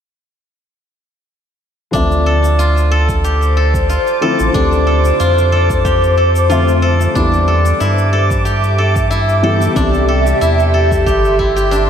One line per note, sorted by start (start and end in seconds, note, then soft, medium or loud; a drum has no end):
1.91 3.98 D2 medium
1.91 4.17 D3 medium
1.91 4.17 F3 medium
1.91 4.18 A3 medium
1.91 4.18 C4 medium
1.91 4.54 D4 medium
1.91 7.11 C5 medium
1.91 7.11 D6 medium
1.91 kick loud
1.91 shaker medium
1.95 4.19 E5 medium
2.12 shaker soft
2.26 2.91 A4 medium
2.44 shaker medium
2.59 3.89 F4 medium
2.59 shaker soft
2.77 shaker soft
2.91 3.56 A4 medium
3.09 kick medium
3.09 shaker medium
3.24 5.60 G4 medium
3.24 shaker soft
3.42 shaker soft
3.57 4.21 A4 medium
3.74 kick medium
3.74 shaker medium
3.89 5.19 F4 medium
3.89 shaker medium
4.07 shaker soft
4.21 4.50 D3 medium
4.21 4.50 F3 medium
4.21 4.51 A3 medium
4.21 4.51 C4 medium
4.21 4.51 E4 medium
4.21 4.86 A4 medium
4.40 4.50 A1 medium
4.40 shaker medium
4.52 5.12 D2 loud
4.52 6.45 D3 medium
4.52 6.46 F3 medium
4.52 6.46 A3 medium
4.52 6.47 C4 medium
4.52 7.15 D4 medium
4.52 6.47 G4 medium
4.52 kick loud
4.52 shaker medium
4.72 shaker soft
4.87 5.52 A4 medium
5.05 shaker medium
5.20 7.08 F2 medium
5.20 6.49 F4 medium
5.20 shaker soft
5.38 shaker soft
5.52 6.17 A4 medium
5.70 kick medium
5.70 shaker medium
5.85 8.20 G4 medium
5.85 kick loud
5.85 shaker soft
6.04 shaker soft
6.17 6.82 A4 medium
6.36 shaker medium
6.49 7.11 D3 medium
6.49 7.11 F3 medium
6.49 7.12 A3 medium
6.49 7.12 C4 medium
6.49 7.86 F4 medium
6.49 7.12 E5 medium
6.49 shaker medium
6.68 shaker soft
6.82 7.47 A4 medium
7.01 shaker medium
7.13 7.73 E2 loud
7.13 9.39 D3 medium
7.13 9.39 E3 medium
7.13 9.40 G3 medium
7.13 9.40 B3 medium
7.13 9.76 D4 medium
7.13 11.90 G4 medium
7.13 11.90 E5 medium
7.13 9.73 D6 medium
7.13 kick loud
7.13 shaker medium
7.17 9.41 E4 medium
7.33 shaker soft
7.48 8.12 A4 medium
7.66 shaker medium
7.80 9.68 G2 medium
7.80 9.10 E4 medium
7.80 shaker medium
7.98 shaker soft
8.13 8.78 A4 medium
8.31 kick loud
8.31 shaker medium
8.45 10.81 G4 medium
8.45 shaker medium
8.64 shaker soft
8.78 9.43 A4 medium
8.96 kick medium
8.96 shaker medium
9.11 10.41 E4 medium
9.11 shaker medium
9.29 shaker soft
9.42 9.72 D3 medium
9.42 9.72 E3 medium
9.42 9.72 G3 medium
9.42 9.72 B3 medium
9.42 9.73 E4 medium
9.42 10.08 A4 medium
9.62 shaker medium
9.74 10.34 C2 medium
9.74 11.67 C3 medium
9.74 11.68 E3 medium
9.74 11.68 G3 medium
9.74 11.69 C4 medium
9.74 11.71 D4 medium
9.74 11.90 C6 medium
9.74 kick loud
9.74 shaker medium
9.78 11.69 A4 medium
9.94 shaker soft
10.08 10.73 A4 medium
10.27 shaker medium
10.41 11.08 E2 medium
10.41 11.38 E4 medium
10.41 shaker soft
10.60 shaker soft
10.74 11.90 A4 medium
10.91 kick medium
10.91 shaker medium
11.06 11.90 G1 loud
11.06 11.56 G4 medium
11.06 kick medium
11.06 shaker soft
11.25 shaker soft
11.39 11.90 E4 medium
11.39 kick medium
11.56 11.90 G4 medium
11.56 shaker medium
11.71 11.90 D4 medium
11.71 shaker medium